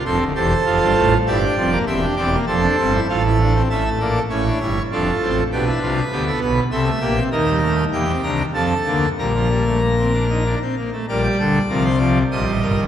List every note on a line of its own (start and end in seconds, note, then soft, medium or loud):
0.05 0.18 F1 medium
0.05 0.18 F2 medium
0.05 0.24 C4 medium
0.05 0.24 A4 medium
0.05 0.24 C5 medium
0.20 0.33 D1 medium
0.20 0.33 D2 medium
0.35 0.54 E1 medium
0.35 0.54 E2 medium
0.35 0.54 G4 medium
0.35 1.14 A4 medium
0.35 1.14 C5 medium
0.65 0.78 F1 medium
0.65 0.78 F2 medium
0.65 1.17 F4 medium
0.81 0.94 G1 medium
0.81 0.94 G2 medium
0.96 1.15 A1 loud
0.96 1.15 A2 medium
1.26 1.45 G1 loud
1.26 1.45 G2 loud
1.26 1.39 E4 medium
1.26 1.78 G4 medium
1.26 1.79 D5 medium
1.43 1.55 D4 medium
1.57 1.76 F1 loud
1.57 1.76 F2 medium
1.57 1.70 C4 medium
1.72 1.85 A#3 medium
1.86 2.05 E1 loud
1.86 2.05 E2 medium
1.86 2.00 C4 medium
1.86 2.39 G4 medium
1.86 2.06 E5 medium
2.02 2.15 D4 medium
2.17 2.36 E1 medium
2.17 2.36 E2 medium
2.17 2.30 C4 medium
2.17 2.36 D5 medium
2.32 2.45 A#3 medium
2.47 2.66 F1 medium
2.47 2.66 F2 loud
2.47 2.61 C4 medium
2.47 3.00 A4 medium
2.47 3.00 C5 medium
2.62 2.76 D4 medium
2.78 2.97 G1 loud
2.78 2.97 G2 medium
2.78 2.91 C4 medium
2.94 3.07 E4 medium
3.09 3.62 A1 medium
3.09 3.62 A2 medium
3.09 3.22 F4 medium
3.09 3.62 A4 medium
3.25 3.38 E4 medium
3.39 3.53 D4 medium
3.55 3.68 C4 medium
3.70 3.89 A1 medium
3.70 3.89 A2 medium
3.70 3.84 C#4 medium
3.70 4.23 A4 medium
3.70 3.89 E5 medium
3.85 3.99 A3 medium
4.00 4.20 A#1 medium
4.00 4.20 A#2 medium
4.00 4.19 A#3 medium
4.00 4.19 D5 medium
4.29 4.49 A1 medium
4.29 4.49 A2 medium
4.29 4.44 C#4 medium
4.29 4.59 E4 medium
4.29 4.82 C#5 medium
4.45 4.59 D4 medium
4.60 4.80 G1 medium
4.60 4.80 G2 medium
4.60 4.80 E4 medium
4.91 5.10 F1 medium
4.91 5.10 F2 medium
4.91 5.10 D4 medium
4.91 5.44 F4 medium
4.91 5.44 A4 medium
5.22 5.41 A1 medium
5.22 5.41 A2 medium
5.22 5.41 C4 medium
5.52 5.70 B1 medium
5.52 5.71 B2 medium
5.52 6.04 D4 medium
5.52 5.65 G4 medium
5.52 6.39 B4 medium
5.66 5.79 E4 medium
5.82 6.00 C2 medium
5.82 6.00 C3 medium
5.82 6.00 F4 medium
6.12 6.30 D2 medium
6.12 6.30 D3 medium
6.12 6.63 B3 medium
6.12 6.25 G4 medium
6.27 6.40 A4 medium
6.41 6.59 B1 medium
6.41 6.60 B2 medium
6.41 6.60 B4 medium
6.71 6.90 C2 medium
6.71 6.90 C3 medium
6.71 6.84 C4 medium
6.71 6.90 A4 medium
6.71 7.23 E5 medium
6.86 6.99 A3 medium
7.01 7.20 A#1 medium
7.01 7.20 A#2 medium
7.01 7.14 A#3 medium
7.01 7.20 G4 medium
7.16 7.29 C4 medium
7.31 7.84 D#2 medium
7.31 7.84 D#3 medium
7.31 7.45 A#3 medium
7.31 7.84 A#4 medium
7.31 7.84 D#5 medium
7.46 7.60 G3 medium
7.61 7.80 A3 medium
7.92 8.11 E2 medium
7.92 8.11 E3 medium
7.92 8.05 A#3 medium
7.92 8.45 G4 medium
7.92 8.11 G5 medium
8.08 8.21 C4 medium
8.23 8.42 C2 medium
8.23 8.42 C3 medium
8.23 8.43 D4 medium
8.23 8.42 A#5 medium
8.53 8.73 F2 medium
8.53 8.73 F3 medium
8.53 8.74 C4 medium
8.53 9.09 A4 medium
8.53 9.09 A5 medium
8.86 9.06 D2 medium
8.86 9.06 D3 medium
8.86 9.06 A#3 medium
9.18 10.55 A#1 medium
9.18 10.55 A#2 medium
9.18 9.32 G3 medium
9.18 10.55 A#4 medium
9.18 10.55 A#5 medium
9.34 9.48 F3 soft
9.49 9.64 G3 medium
9.65 9.79 A3 medium
9.80 9.95 A#3 medium
9.98 10.12 C4 medium
10.12 10.27 D4 medium
10.30 10.43 D#4 soft
10.45 10.59 D4 medium
10.61 10.75 C4 medium
10.77 10.90 A#3 medium
10.92 11.06 A3 medium
11.08 11.28 A#1 medium
11.08 11.28 A#2 medium
11.08 11.62 G3 medium
11.08 11.22 A#4 medium
11.08 11.96 D5 medium
11.24 11.37 G4 medium
11.39 11.58 D2 medium
11.39 11.58 D3 medium
11.39 11.58 A4 medium
11.69 12.23 C2 medium
11.69 12.23 C3 medium
11.69 11.89 F3 medium
11.69 11.83 A#4 medium
11.85 11.99 C5 medium
11.98 12.18 F3 medium
11.98 12.18 D5 medium
12.31 12.45 A#1 medium
12.31 12.45 A#2 medium
12.31 12.84 G3 medium
12.31 12.51 C5 medium
12.31 12.84 D#5 medium
12.46 12.60 A1 medium
12.46 12.60 A2 medium
12.61 12.75 G1 medium
12.61 12.75 G2 medium
12.61 12.80 A#4 medium
12.76 12.87 D#1 medium
12.76 12.87 D#2 medium